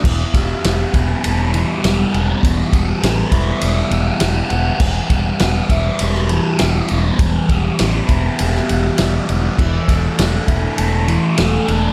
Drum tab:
CC |x---------------|----------------|x---------------|----------------|
RD |--x-x-x-x-x-x-x-|x-x-x-x-x-x-x-x-|--x-x-x-x-x-x-x-|x-x-x-x-x-x-x-x-|
SD |----o-------o---|----o-------o---|----o----o--o---|----o----o--o---|
BD |o-o---o---------|o-o---o---------|o-o---o---------|o-o---o---------|

CC |x---------------|
RD |--x-x-x-x-x-x-x-|
SD |----o-------o---|
BD |o-o---o---------|